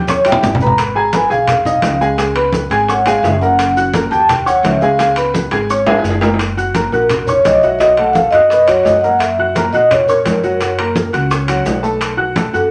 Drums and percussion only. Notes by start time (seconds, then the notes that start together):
0.08 high bongo, low conga, maracas
0.25 high bongo, high timbale, maracas
0.32 low conga
0.43 high bongo, low bongo, low conga, low timbale, maracas
0.55 low conga
0.60 maracas
0.66 low conga
0.78 high bongo, high conga, high timbale, maracas
0.95 high bongo, high conga
1.13 high bongo, high conga, high timbale, low timbale, maracas
1.30 high bongo, high conga, maracas
1.48 high bongo, high conga, low conga, high timbale, maracas
1.65 high bongo, high conga, low conga, maracas
1.82 high bongo, low bongo, high conga, high timbale, low timbale, maracas
2.00 high conga, maracas
2.17 high bongo, high conga, high timbale, maracas
2.35 high bongo, high conga, high timbale
2.53 high bongo, high conga, low timbale, maracas
2.70 high bongo, high conga, high timbale, maracas
2.88 high bongo, high conga, maracas
3.05 high bongo, high conga, high timbale, maracas
3.24 high bongo, low bongo, high conga, low timbale, maracas
3.41 high conga, maracas
3.58 high bongo, high conga, high timbale, maracas
3.76 high bongo, high conga, maracas
3.94 high bongo, high conga, high timbale, low timbale, maracas
4.12 high bongo, high conga, maracas
4.29 high bongo, high conga, low conga, high timbale, maracas
4.46 high bongo, high conga, maracas
4.64 high bongo, low bongo, high conga, high timbale, low timbale, maracas
4.82 maracas
4.99 high bongo, high conga, high timbale, maracas
5.16 high bongo, high conga, high timbale, maracas
5.34 high bongo, high conga, low timbale, maracas
5.51 high bongo, high conga, high timbale, maracas
5.69 high conga, maracas
5.87 low bongo, high conga, high timbale
5.99 low bongo
6.04 high conga, low timbale, maracas
6.10 low bongo
6.21 low bongo, high conga, low timbale, maracas
6.34 low bongo
6.39 high bongo, high conga, high timbale, maracas
6.58 high bongo, high conga, maracas
6.75 high bongo, high conga, high timbale, low timbale, maracas
6.93 high bongo, high conga, maracas
7.09 high bongo, high conga, low conga, high timbale, maracas
7.27 high bongo, high conga, low conga, maracas
7.45 high bongo, low bongo, high conga, high timbale, low timbale, maracas
7.63 maracas
7.80 high bongo, high conga, high timbale, maracas
7.97 high bongo, high conga, high timbale
8.15 high bongo, high conga, low timbale, maracas
8.32 high bongo, high conga, high timbale, maracas
8.50 high bongo, high conga, maracas
8.68 high bongo, high conga, high timbale, maracas
8.85 high bongo, low bongo, high conga, low timbale, maracas
9.04 high conga, maracas
9.20 high bongo, high conga, high timbale, maracas
9.38 high bongo, high conga
9.55 high bongo, high conga, high timbale, low timbale, maracas
9.74 high bongo, high conga, maracas
9.91 high bongo, high conga, low conga, high timbale, maracas
10.08 high bongo, high conga, maracas
10.26 high bongo, low bongo, high conga, high timbale, low timbale, maracas
10.43 high conga, maracas
10.61 high bongo, high conga, high timbale, maracas
10.79 high bongo, high conga, high timbale
10.96 high bongo, high conga, low timbale, maracas
11.13 high bongo, high conga, high timbale, maracas
11.31 high bongo, high conga, maracas
11.48 high bongo, high conga, high timbale, maracas
11.66 high bongo, low bongo, high conga, low timbale, maracas
11.83 high conga, maracas
12.01 high bongo, high conga, high timbale, maracas
12.19 high bongo, high conga
12.36 high bongo, high conga, high timbale, low timbale, maracas
12.54 high bongo, high conga, maracas